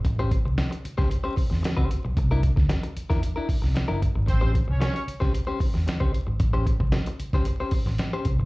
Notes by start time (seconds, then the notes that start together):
0.05 A1, muted clean electric guitar stroke, kick, closed hi-hat
0.19 C#4 G4 C5
0.31 muted clean electric guitar stroke, kick, closed hi-hat
0.45 C2, muted clean electric guitar stroke
0.58 muted clean electric guitar stroke, snare, closed hi-hat
0.71 muted clean electric guitar stroke, closed hi-hat
0.85 muted fingered electric bass stroke, closed hi-hat
0.98 C#2 C#4 G4 C5, kick, snare
1.09 muted clean electric guitar stroke, closed hi-hat
1.24 C#4 G4 C5
1.36 muted clean electric guitar stroke, muted fingered electric bass stroke, kick, open hi-hat
1.50 E2, muted clean electric guitar stroke, snare
1.62 muted clean electric guitar stroke, muted fingered electric bass stroke, snare, closed hi-hat
1.77 C#2 C#4 G4 C5, kick
1.90 muted clean electric guitar stroke, closed hi-hat
2.05 B1, muted clean electric guitar stroke
2.17 C2, muted clean electric guitar stroke, kick, closed hi-hat
2.31 D4 E4 A#4
2.43 kick, closed hi-hat
2.56 D2, muted clean electric guitar stroke, kick, snare
2.69 muted clean electric guitar stroke, snare, closed hi-hat
2.83 muted clean electric guitar stroke, closed hi-hat
2.97 muted fingered electric bass stroke, closed hi-hat
3.10 E2 D4 E4 A#4, kick, snare, closed hi-hat
3.21 muted clean electric guitar stroke, closed hi-hat
3.36 D4 E4 A#4
3.48 muted clean electric guitar stroke, muted fingered electric bass stroke, kick, open hi-hat
3.62 C2, muted clean electric guitar stroke, snare
3.74 muted clean electric guitar stroke, snare, closed hi-hat
3.88 F#1 D4 E4 A#4
4.01 G1, muted clean electric guitar stroke, kick, closed hi-hat
4.15 G#1, muted clean electric guitar stroke
4.26 A1 C4 C5, muted clean electric guitar stroke, kick, closed hi-hat
4.41 C#4 G4 C5
4.53 muted clean electric guitar stroke, kick, closed hi-hat
4.68 C2 C#4 C#5, muted clean electric guitar stroke
4.80 C#4 C#5, muted clean electric guitar stroke, snare, closed hi-hat
4.94 muted clean electric guitar stroke, closed hi-hat
5.08 muted fingered electric bass stroke, closed hi-hat
5.20 C#2 C#4 G4 C5, kick, snare
5.33 muted clean electric guitar stroke, closed hi-hat
5.47 C#4 G4 C5
5.60 muted clean electric guitar stroke, muted fingered electric bass stroke, kick, open hi-hat
5.74 E2, muted clean electric guitar stroke, snare
5.86 muted clean electric guitar stroke, muted fingered electric bass stroke, snare, closed hi-hat
6.00 C#2 C#4 G4 C5, kick
6.13 muted clean electric guitar stroke, closed hi-hat
6.27 G#1, muted clean electric guitar stroke
6.40 A1, muted clean electric guitar stroke, kick, closed hi-hat
6.53 C#4 G4 C5
6.66 muted clean electric guitar stroke, kick, closed hi-hat
6.80 C2, muted clean electric guitar stroke, kick
6.92 muted clean electric guitar stroke, snare, closed hi-hat
7.06 muted clean electric guitar stroke, closed hi-hat
7.20 muted fingered electric bass stroke, closed hi-hat
7.33 C#2 C#4 G4 C5, kick, snare
7.45 muted clean electric guitar stroke, closed hi-hat
7.60 C#4 G4 C5
7.71 muted fingered electric bass stroke, muted clean electric guitar stroke, kick, open hi-hat
7.86 A1, muted clean electric guitar stroke, snare
7.98 muted clean electric guitar stroke, snare, closed hi-hat
8.13 C#4 G4 C5
8.25 C2, muted clean electric guitar stroke, kick, closed hi-hat
8.39 G#1, muted clean electric guitar stroke